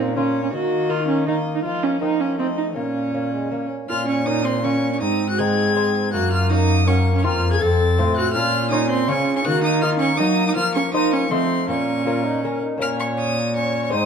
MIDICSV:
0, 0, Header, 1, 6, 480
1, 0, Start_track
1, 0, Key_signature, -5, "minor"
1, 0, Tempo, 372208
1, 682, Time_signature, 3, 2, 24, 8
1, 18125, End_track
2, 0, Start_track
2, 0, Title_t, "Violin"
2, 0, Program_c, 0, 40
2, 0, Note_on_c, 0, 73, 60
2, 159, Note_off_c, 0, 73, 0
2, 196, Note_on_c, 0, 73, 66
2, 701, Note_on_c, 0, 75, 63
2, 720, Note_off_c, 0, 73, 0
2, 1649, Note_off_c, 0, 75, 0
2, 1660, Note_on_c, 0, 75, 65
2, 2119, Note_off_c, 0, 75, 0
2, 2134, Note_on_c, 0, 75, 53
2, 2595, Note_off_c, 0, 75, 0
2, 2606, Note_on_c, 0, 75, 56
2, 3071, Note_off_c, 0, 75, 0
2, 3087, Note_on_c, 0, 75, 58
2, 3559, Note_off_c, 0, 75, 0
2, 3577, Note_on_c, 0, 73, 51
2, 4763, Note_off_c, 0, 73, 0
2, 5021, Note_on_c, 0, 89, 95
2, 5245, Note_off_c, 0, 89, 0
2, 5262, Note_on_c, 0, 85, 87
2, 5492, Note_on_c, 0, 87, 100
2, 5511, Note_off_c, 0, 85, 0
2, 5739, Note_on_c, 0, 84, 91
2, 5758, Note_off_c, 0, 87, 0
2, 5982, Note_on_c, 0, 85, 92
2, 6002, Note_off_c, 0, 84, 0
2, 6344, Note_off_c, 0, 85, 0
2, 6357, Note_on_c, 0, 85, 85
2, 6403, Note_off_c, 0, 85, 0
2, 6457, Note_on_c, 0, 87, 91
2, 6813, Note_off_c, 0, 87, 0
2, 6829, Note_on_c, 0, 90, 87
2, 6941, Note_on_c, 0, 92, 96
2, 6961, Note_off_c, 0, 90, 0
2, 7896, Note_off_c, 0, 92, 0
2, 7904, Note_on_c, 0, 90, 111
2, 8139, Note_off_c, 0, 90, 0
2, 8163, Note_on_c, 0, 89, 89
2, 8387, Note_off_c, 0, 89, 0
2, 8397, Note_on_c, 0, 87, 109
2, 8865, Note_on_c, 0, 85, 91
2, 8885, Note_off_c, 0, 87, 0
2, 9219, Note_off_c, 0, 85, 0
2, 9250, Note_on_c, 0, 85, 81
2, 9338, Note_off_c, 0, 85, 0
2, 9346, Note_on_c, 0, 89, 100
2, 9691, Note_off_c, 0, 89, 0
2, 9709, Note_on_c, 0, 92, 97
2, 9814, Note_on_c, 0, 93, 100
2, 9833, Note_off_c, 0, 92, 0
2, 10523, Note_off_c, 0, 93, 0
2, 10531, Note_on_c, 0, 90, 119
2, 10740, Note_off_c, 0, 90, 0
2, 10747, Note_on_c, 0, 89, 113
2, 11220, Note_off_c, 0, 89, 0
2, 11228, Note_on_c, 0, 87, 98
2, 11466, Note_off_c, 0, 87, 0
2, 11474, Note_on_c, 0, 84, 99
2, 11714, Note_on_c, 0, 85, 112
2, 11734, Note_off_c, 0, 84, 0
2, 12064, Note_off_c, 0, 85, 0
2, 12072, Note_on_c, 0, 85, 95
2, 12188, Note_on_c, 0, 90, 121
2, 12207, Note_off_c, 0, 85, 0
2, 12420, Note_off_c, 0, 90, 0
2, 12428, Note_on_c, 0, 87, 99
2, 12655, Note_off_c, 0, 87, 0
2, 12663, Note_on_c, 0, 89, 110
2, 12760, Note_off_c, 0, 89, 0
2, 12895, Note_on_c, 0, 85, 107
2, 13125, Note_on_c, 0, 87, 114
2, 13144, Note_off_c, 0, 85, 0
2, 13496, Note_off_c, 0, 87, 0
2, 13513, Note_on_c, 0, 87, 95
2, 13560, Note_off_c, 0, 87, 0
2, 13603, Note_on_c, 0, 89, 117
2, 13850, Note_off_c, 0, 89, 0
2, 13861, Note_on_c, 0, 85, 96
2, 14099, Note_off_c, 0, 85, 0
2, 14108, Note_on_c, 0, 87, 104
2, 14343, Note_off_c, 0, 87, 0
2, 14358, Note_on_c, 0, 85, 92
2, 14585, Note_on_c, 0, 84, 97
2, 14604, Note_off_c, 0, 85, 0
2, 15070, Note_off_c, 0, 84, 0
2, 15084, Note_on_c, 0, 85, 90
2, 16267, Note_off_c, 0, 85, 0
2, 16529, Note_on_c, 0, 89, 101
2, 16624, Note_off_c, 0, 89, 0
2, 16762, Note_on_c, 0, 85, 88
2, 16859, Note_off_c, 0, 85, 0
2, 17000, Note_on_c, 0, 87, 98
2, 17473, Note_off_c, 0, 87, 0
2, 17485, Note_on_c, 0, 85, 97
2, 17836, Note_off_c, 0, 85, 0
2, 17853, Note_on_c, 0, 85, 83
2, 17956, Note_off_c, 0, 85, 0
2, 17964, Note_on_c, 0, 87, 93
2, 18125, Note_off_c, 0, 87, 0
2, 18125, End_track
3, 0, Start_track
3, 0, Title_t, "Viola"
3, 0, Program_c, 1, 41
3, 0, Note_on_c, 1, 60, 77
3, 203, Note_off_c, 1, 60, 0
3, 213, Note_on_c, 1, 61, 79
3, 560, Note_off_c, 1, 61, 0
3, 567, Note_on_c, 1, 61, 70
3, 682, Note_off_c, 1, 61, 0
3, 689, Note_on_c, 1, 66, 88
3, 1161, Note_on_c, 1, 65, 88
3, 1181, Note_off_c, 1, 66, 0
3, 1391, Note_off_c, 1, 65, 0
3, 1399, Note_on_c, 1, 61, 78
3, 1630, Note_off_c, 1, 61, 0
3, 1638, Note_on_c, 1, 63, 82
3, 1741, Note_off_c, 1, 63, 0
3, 1998, Note_on_c, 1, 63, 72
3, 2111, Note_off_c, 1, 63, 0
3, 2119, Note_on_c, 1, 65, 82
3, 2366, Note_on_c, 1, 61, 76
3, 2385, Note_off_c, 1, 65, 0
3, 2600, Note_off_c, 1, 61, 0
3, 2606, Note_on_c, 1, 63, 82
3, 2842, Note_on_c, 1, 61, 73
3, 2862, Note_off_c, 1, 63, 0
3, 3075, Note_off_c, 1, 61, 0
3, 3083, Note_on_c, 1, 60, 75
3, 3178, Note_off_c, 1, 60, 0
3, 3319, Note_on_c, 1, 63, 72
3, 3416, Note_off_c, 1, 63, 0
3, 3569, Note_on_c, 1, 61, 63
3, 4759, Note_off_c, 1, 61, 0
3, 5016, Note_on_c, 1, 65, 90
3, 5243, Note_off_c, 1, 65, 0
3, 5262, Note_on_c, 1, 61, 76
3, 5498, Note_off_c, 1, 61, 0
3, 5508, Note_on_c, 1, 63, 87
3, 5735, Note_on_c, 1, 60, 78
3, 5754, Note_off_c, 1, 63, 0
3, 5967, Note_off_c, 1, 60, 0
3, 5975, Note_on_c, 1, 61, 79
3, 6332, Note_off_c, 1, 61, 0
3, 6347, Note_on_c, 1, 61, 70
3, 6449, Note_off_c, 1, 61, 0
3, 6457, Note_on_c, 1, 63, 74
3, 6813, Note_off_c, 1, 63, 0
3, 6832, Note_on_c, 1, 66, 76
3, 6938, Note_on_c, 1, 68, 79
3, 6957, Note_off_c, 1, 66, 0
3, 7895, Note_off_c, 1, 68, 0
3, 7902, Note_on_c, 1, 66, 88
3, 8135, Note_off_c, 1, 66, 0
3, 8143, Note_on_c, 1, 65, 86
3, 8385, Note_on_c, 1, 63, 93
3, 8404, Note_off_c, 1, 65, 0
3, 8860, Note_off_c, 1, 63, 0
3, 8866, Note_on_c, 1, 61, 71
3, 9204, Note_off_c, 1, 61, 0
3, 9212, Note_on_c, 1, 61, 75
3, 9339, Note_on_c, 1, 65, 85
3, 9358, Note_off_c, 1, 61, 0
3, 9685, Note_off_c, 1, 65, 0
3, 9693, Note_on_c, 1, 68, 93
3, 9801, Note_off_c, 1, 68, 0
3, 9809, Note_on_c, 1, 69, 88
3, 10511, Note_off_c, 1, 69, 0
3, 10544, Note_on_c, 1, 66, 92
3, 10636, Note_off_c, 1, 66, 0
3, 10775, Note_on_c, 1, 65, 93
3, 11238, Note_off_c, 1, 65, 0
3, 11246, Note_on_c, 1, 63, 90
3, 11478, Note_off_c, 1, 63, 0
3, 11487, Note_on_c, 1, 60, 86
3, 11732, Note_on_c, 1, 61, 83
3, 11751, Note_off_c, 1, 60, 0
3, 12063, Note_off_c, 1, 61, 0
3, 12071, Note_on_c, 1, 61, 81
3, 12120, Note_off_c, 1, 61, 0
3, 12187, Note_on_c, 1, 66, 101
3, 12425, Note_off_c, 1, 66, 0
3, 12436, Note_on_c, 1, 63, 88
3, 12659, Note_on_c, 1, 65, 97
3, 12678, Note_off_c, 1, 63, 0
3, 12883, Note_off_c, 1, 65, 0
3, 12891, Note_on_c, 1, 61, 86
3, 13112, Note_off_c, 1, 61, 0
3, 13120, Note_on_c, 1, 63, 89
3, 13486, Note_off_c, 1, 63, 0
3, 13502, Note_on_c, 1, 63, 79
3, 13611, Note_off_c, 1, 63, 0
3, 13619, Note_on_c, 1, 65, 92
3, 13717, Note_off_c, 1, 65, 0
3, 13870, Note_on_c, 1, 61, 86
3, 13965, Note_off_c, 1, 61, 0
3, 14097, Note_on_c, 1, 63, 94
3, 14349, Note_on_c, 1, 61, 82
3, 14368, Note_off_c, 1, 63, 0
3, 14578, Note_off_c, 1, 61, 0
3, 14586, Note_on_c, 1, 60, 80
3, 15061, Note_off_c, 1, 60, 0
3, 15071, Note_on_c, 1, 61, 80
3, 16260, Note_off_c, 1, 61, 0
3, 16528, Note_on_c, 1, 73, 65
3, 17436, Note_off_c, 1, 73, 0
3, 17501, Note_on_c, 1, 73, 71
3, 17971, Note_on_c, 1, 72, 70
3, 17991, Note_off_c, 1, 73, 0
3, 18125, Note_off_c, 1, 72, 0
3, 18125, End_track
4, 0, Start_track
4, 0, Title_t, "Lute"
4, 0, Program_c, 2, 24
4, 0, Note_on_c, 2, 46, 46
4, 0, Note_on_c, 2, 58, 43
4, 0, Note_on_c, 2, 61, 45
4, 0, Note_on_c, 2, 65, 48
4, 157, Note_off_c, 2, 58, 0
4, 163, Note_off_c, 2, 61, 0
4, 167, Note_off_c, 2, 65, 0
4, 211, Note_on_c, 2, 58, 44
4, 219, Note_on_c, 2, 61, 41
4, 221, Note_on_c, 2, 65, 50
4, 631, Note_off_c, 2, 46, 0
4, 638, Note_off_c, 2, 58, 0
4, 643, Note_off_c, 2, 61, 0
4, 643, Note_off_c, 2, 65, 0
4, 681, Note_on_c, 2, 51, 49
4, 1152, Note_on_c, 2, 58, 46
4, 1165, Note_on_c, 2, 63, 48
4, 1587, Note_off_c, 2, 58, 0
4, 1594, Note_off_c, 2, 63, 0
4, 1648, Note_on_c, 2, 58, 41
4, 1656, Note_on_c, 2, 63, 47
4, 2065, Note_off_c, 2, 51, 0
4, 2075, Note_off_c, 2, 58, 0
4, 2077, Note_off_c, 2, 63, 0
4, 2128, Note_on_c, 2, 53, 45
4, 2586, Note_off_c, 2, 53, 0
4, 2591, Note_on_c, 2, 58, 45
4, 2598, Note_on_c, 2, 60, 41
4, 2604, Note_on_c, 2, 63, 47
4, 3025, Note_off_c, 2, 58, 0
4, 3029, Note_off_c, 2, 60, 0
4, 3032, Note_off_c, 2, 63, 0
4, 3082, Note_on_c, 2, 57, 38
4, 3089, Note_on_c, 2, 60, 38
4, 3095, Note_on_c, 2, 63, 42
4, 3517, Note_off_c, 2, 57, 0
4, 3521, Note_off_c, 2, 60, 0
4, 3525, Note_off_c, 2, 63, 0
4, 3555, Note_on_c, 2, 46, 41
4, 4050, Note_on_c, 2, 58, 39
4, 4055, Note_on_c, 2, 61, 45
4, 4488, Note_off_c, 2, 58, 0
4, 4491, Note_off_c, 2, 61, 0
4, 4534, Note_on_c, 2, 58, 38
4, 4542, Note_on_c, 2, 61, 42
4, 4725, Note_off_c, 2, 46, 0
4, 4972, Note_off_c, 2, 58, 0
4, 4976, Note_off_c, 2, 61, 0
4, 5022, Note_on_c, 2, 46, 60
4, 5499, Note_on_c, 2, 58, 54
4, 5511, Note_on_c, 2, 61, 53
4, 5933, Note_off_c, 2, 58, 0
4, 5939, Note_off_c, 2, 61, 0
4, 5986, Note_on_c, 2, 58, 51
4, 5994, Note_on_c, 2, 61, 56
4, 6413, Note_off_c, 2, 46, 0
4, 6417, Note_off_c, 2, 58, 0
4, 6422, Note_off_c, 2, 61, 0
4, 6462, Note_on_c, 2, 44, 56
4, 6956, Note_on_c, 2, 56, 49
4, 6965, Note_on_c, 2, 60, 57
4, 6965, Note_on_c, 2, 63, 56
4, 7382, Note_off_c, 2, 56, 0
4, 7385, Note_off_c, 2, 60, 0
4, 7386, Note_off_c, 2, 63, 0
4, 7427, Note_on_c, 2, 56, 56
4, 7431, Note_on_c, 2, 60, 49
4, 7440, Note_on_c, 2, 63, 54
4, 7851, Note_off_c, 2, 44, 0
4, 7858, Note_off_c, 2, 56, 0
4, 7861, Note_off_c, 2, 60, 0
4, 7864, Note_off_c, 2, 63, 0
4, 7915, Note_on_c, 2, 42, 61
4, 8390, Note_on_c, 2, 58, 52
4, 8396, Note_on_c, 2, 61, 55
4, 8402, Note_on_c, 2, 66, 64
4, 8815, Note_off_c, 2, 58, 0
4, 8818, Note_off_c, 2, 61, 0
4, 8822, Note_off_c, 2, 66, 0
4, 8859, Note_on_c, 2, 58, 56
4, 8865, Note_on_c, 2, 61, 51
4, 8871, Note_on_c, 2, 66, 59
4, 9287, Note_off_c, 2, 58, 0
4, 9288, Note_off_c, 2, 42, 0
4, 9290, Note_off_c, 2, 61, 0
4, 9294, Note_off_c, 2, 66, 0
4, 9335, Note_on_c, 2, 41, 63
4, 9336, Note_on_c, 2, 60, 53
4, 9343, Note_on_c, 2, 65, 52
4, 9348, Note_on_c, 2, 70, 50
4, 9764, Note_off_c, 2, 60, 0
4, 9766, Note_off_c, 2, 41, 0
4, 9767, Note_off_c, 2, 65, 0
4, 9771, Note_off_c, 2, 70, 0
4, 9804, Note_on_c, 2, 41, 61
4, 10236, Note_off_c, 2, 41, 0
4, 10294, Note_on_c, 2, 60, 52
4, 10295, Note_on_c, 2, 45, 62
4, 10301, Note_on_c, 2, 65, 50
4, 10307, Note_on_c, 2, 72, 56
4, 10719, Note_off_c, 2, 60, 0
4, 10722, Note_off_c, 2, 45, 0
4, 10725, Note_off_c, 2, 65, 0
4, 10728, Note_off_c, 2, 72, 0
4, 10769, Note_on_c, 2, 46, 66
4, 11237, Note_on_c, 2, 58, 60
4, 11248, Note_on_c, 2, 65, 58
4, 11249, Note_on_c, 2, 73, 66
4, 11671, Note_off_c, 2, 46, 0
4, 11671, Note_off_c, 2, 58, 0
4, 11673, Note_off_c, 2, 65, 0
4, 11676, Note_off_c, 2, 73, 0
4, 11707, Note_on_c, 2, 49, 62
4, 11710, Note_on_c, 2, 58, 61
4, 11718, Note_on_c, 2, 65, 53
4, 11718, Note_on_c, 2, 73, 59
4, 12142, Note_off_c, 2, 58, 0
4, 12144, Note_off_c, 2, 49, 0
4, 12144, Note_off_c, 2, 65, 0
4, 12149, Note_off_c, 2, 73, 0
4, 12192, Note_on_c, 2, 51, 64
4, 12668, Note_on_c, 2, 58, 60
4, 12675, Note_on_c, 2, 63, 58
4, 12683, Note_on_c, 2, 75, 63
4, 13095, Note_off_c, 2, 51, 0
4, 13101, Note_off_c, 2, 58, 0
4, 13101, Note_off_c, 2, 63, 0
4, 13103, Note_off_c, 2, 75, 0
4, 13134, Note_on_c, 2, 54, 63
4, 13140, Note_on_c, 2, 58, 53
4, 13149, Note_on_c, 2, 75, 58
4, 13151, Note_on_c, 2, 63, 53
4, 13573, Note_off_c, 2, 54, 0
4, 13573, Note_off_c, 2, 58, 0
4, 13576, Note_off_c, 2, 63, 0
4, 13579, Note_off_c, 2, 75, 0
4, 13613, Note_on_c, 2, 53, 57
4, 14103, Note_on_c, 2, 58, 59
4, 14108, Note_on_c, 2, 63, 56
4, 14112, Note_on_c, 2, 72, 61
4, 14529, Note_off_c, 2, 53, 0
4, 14538, Note_off_c, 2, 58, 0
4, 14539, Note_off_c, 2, 63, 0
4, 14542, Note_off_c, 2, 72, 0
4, 14583, Note_on_c, 2, 53, 62
4, 14584, Note_on_c, 2, 57, 50
4, 14592, Note_on_c, 2, 63, 51
4, 14600, Note_on_c, 2, 72, 50
4, 15020, Note_off_c, 2, 57, 0
4, 15021, Note_off_c, 2, 53, 0
4, 15026, Note_off_c, 2, 63, 0
4, 15030, Note_off_c, 2, 72, 0
4, 15065, Note_on_c, 2, 46, 59
4, 15553, Note_on_c, 2, 58, 51
4, 15561, Note_on_c, 2, 61, 54
4, 15565, Note_on_c, 2, 70, 59
4, 15992, Note_off_c, 2, 58, 0
4, 15994, Note_off_c, 2, 61, 0
4, 15998, Note_off_c, 2, 70, 0
4, 16046, Note_on_c, 2, 58, 51
4, 16052, Note_on_c, 2, 61, 48
4, 16053, Note_on_c, 2, 70, 54
4, 16229, Note_off_c, 2, 46, 0
4, 16462, Note_off_c, 2, 58, 0
4, 16477, Note_on_c, 2, 58, 47
4, 16481, Note_off_c, 2, 61, 0
4, 16483, Note_off_c, 2, 70, 0
4, 16496, Note_on_c, 2, 61, 49
4, 16510, Note_on_c, 2, 70, 53
4, 16531, Note_on_c, 2, 46, 59
4, 17895, Note_off_c, 2, 58, 0
4, 17904, Note_off_c, 2, 61, 0
4, 17910, Note_on_c, 2, 56, 51
4, 17912, Note_off_c, 2, 70, 0
4, 17914, Note_off_c, 2, 46, 0
4, 17926, Note_on_c, 2, 60, 54
4, 17940, Note_on_c, 2, 72, 53
4, 17958, Note_on_c, 2, 44, 56
4, 18125, Note_off_c, 2, 44, 0
4, 18125, Note_off_c, 2, 56, 0
4, 18125, Note_off_c, 2, 60, 0
4, 18125, Note_off_c, 2, 72, 0
4, 18125, End_track
5, 0, Start_track
5, 0, Title_t, "Trombone"
5, 0, Program_c, 3, 57
5, 0, Note_on_c, 3, 58, 67
5, 155, Note_off_c, 3, 58, 0
5, 210, Note_on_c, 3, 58, 67
5, 676, Note_off_c, 3, 58, 0
5, 695, Note_on_c, 3, 58, 68
5, 1627, Note_off_c, 3, 58, 0
5, 1654, Note_on_c, 3, 58, 69
5, 2116, Note_off_c, 3, 58, 0
5, 2127, Note_on_c, 3, 58, 60
5, 2581, Note_off_c, 3, 58, 0
5, 2588, Note_on_c, 3, 58, 57
5, 3073, Note_on_c, 3, 57, 55
5, 3092, Note_off_c, 3, 58, 0
5, 3555, Note_on_c, 3, 58, 56
5, 3574, Note_off_c, 3, 57, 0
5, 3999, Note_off_c, 3, 58, 0
5, 4043, Note_on_c, 3, 58, 58
5, 4273, Note_off_c, 3, 58, 0
5, 4295, Note_on_c, 3, 56, 61
5, 4522, Note_on_c, 3, 58, 69
5, 4541, Note_off_c, 3, 56, 0
5, 4756, Note_off_c, 3, 58, 0
5, 4764, Note_on_c, 3, 61, 54
5, 5009, Note_off_c, 3, 61, 0
5, 5018, Note_on_c, 3, 61, 76
5, 5762, Note_off_c, 3, 61, 0
5, 5981, Note_on_c, 3, 61, 69
5, 6454, Note_off_c, 3, 61, 0
5, 6460, Note_on_c, 3, 60, 70
5, 6932, Note_off_c, 3, 60, 0
5, 6937, Note_on_c, 3, 60, 74
5, 7904, Note_on_c, 3, 58, 76
5, 7923, Note_off_c, 3, 60, 0
5, 8853, Note_off_c, 3, 58, 0
5, 8861, Note_on_c, 3, 58, 77
5, 9326, Note_off_c, 3, 58, 0
5, 9340, Note_on_c, 3, 58, 77
5, 9827, Note_on_c, 3, 60, 76
5, 9846, Note_off_c, 3, 58, 0
5, 10772, Note_on_c, 3, 61, 86
5, 10791, Note_off_c, 3, 60, 0
5, 11724, Note_off_c, 3, 61, 0
5, 11729, Note_on_c, 3, 61, 77
5, 12203, Note_on_c, 3, 58, 88
5, 12222, Note_off_c, 3, 61, 0
5, 13139, Note_off_c, 3, 58, 0
5, 13147, Note_on_c, 3, 58, 82
5, 13605, Note_off_c, 3, 58, 0
5, 13613, Note_on_c, 3, 58, 86
5, 14090, Note_off_c, 3, 58, 0
5, 14098, Note_on_c, 3, 58, 75
5, 14575, Note_on_c, 3, 57, 75
5, 14594, Note_off_c, 3, 58, 0
5, 15061, Note_on_c, 3, 58, 77
5, 15080, Note_off_c, 3, 57, 0
5, 15503, Note_off_c, 3, 58, 0
5, 15541, Note_on_c, 3, 65, 83
5, 15799, Note_on_c, 3, 63, 83
5, 15819, Note_off_c, 3, 65, 0
5, 16028, Note_off_c, 3, 63, 0
5, 16036, Note_on_c, 3, 61, 83
5, 16272, Note_off_c, 3, 61, 0
5, 16280, Note_on_c, 3, 63, 66
5, 16506, Note_off_c, 3, 63, 0
5, 16513, Note_on_c, 3, 61, 76
5, 17263, Note_off_c, 3, 61, 0
5, 17482, Note_on_c, 3, 61, 73
5, 17971, Note_on_c, 3, 63, 74
5, 17990, Note_off_c, 3, 61, 0
5, 18125, Note_off_c, 3, 63, 0
5, 18125, End_track
6, 0, Start_track
6, 0, Title_t, "Cello"
6, 0, Program_c, 4, 42
6, 0, Note_on_c, 4, 46, 67
6, 697, Note_on_c, 4, 51, 63
6, 716, Note_off_c, 4, 46, 0
6, 2125, Note_off_c, 4, 51, 0
6, 2138, Note_on_c, 4, 53, 59
6, 3568, Note_on_c, 4, 46, 54
6, 3587, Note_off_c, 4, 53, 0
6, 4783, Note_off_c, 4, 46, 0
6, 5020, Note_on_c, 4, 46, 76
6, 6467, Note_on_c, 4, 44, 73
6, 6486, Note_off_c, 4, 46, 0
6, 7906, Note_on_c, 4, 42, 76
6, 7925, Note_off_c, 4, 44, 0
6, 9340, Note_on_c, 4, 41, 80
6, 9359, Note_off_c, 4, 42, 0
6, 9815, Note_off_c, 4, 41, 0
6, 9822, Note_on_c, 4, 41, 76
6, 10308, Note_on_c, 4, 45, 76
6, 10327, Note_off_c, 4, 41, 0
6, 10780, Note_on_c, 4, 46, 82
6, 10799, Note_off_c, 4, 45, 0
6, 11723, Note_on_c, 4, 49, 73
6, 11742, Note_off_c, 4, 46, 0
6, 12203, Note_on_c, 4, 51, 85
6, 12222, Note_off_c, 4, 49, 0
6, 13151, Note_on_c, 4, 54, 75
6, 13171, Note_off_c, 4, 51, 0
6, 13619, Note_off_c, 4, 54, 0
6, 13627, Note_on_c, 4, 53, 73
6, 14568, Note_off_c, 4, 53, 0
6, 14589, Note_on_c, 4, 53, 78
6, 15070, Note_on_c, 4, 46, 69
6, 15090, Note_off_c, 4, 53, 0
6, 16284, Note_off_c, 4, 46, 0
6, 16523, Note_on_c, 4, 46, 75
6, 17965, Note_on_c, 4, 44, 71
6, 17985, Note_off_c, 4, 46, 0
6, 18125, Note_off_c, 4, 44, 0
6, 18125, End_track
0, 0, End_of_file